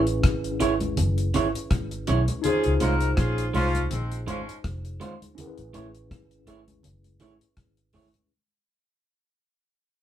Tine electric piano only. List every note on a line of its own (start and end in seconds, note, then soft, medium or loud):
0.00 2.38 C#4 medium
0.00 2.40 E4 medium
0.00 2.41 G#4 medium
0.00 2.42 B4 medium
2.42 5.32 D#4 medium
2.42 5.33 F4 medium
2.42 5.34 G#4 medium
2.48 5.35 C5 medium
5.35 8.25 C#4 medium
5.35 8.26 E4 medium
5.35 8.27 G#4 medium
5.41 5.46 A#4 medium
5.47 8.31 B4 medium